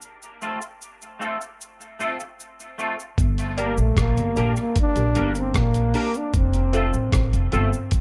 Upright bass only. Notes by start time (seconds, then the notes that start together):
3.18 G1
3.78 A#1
3.97 A#1
4.17 G1
4.37 A#1
4.96 A#1
5.16 G1
5.55 A#1
6.34 F1
6.94 A1
7.13 A1
7.33 F1
7.53 G1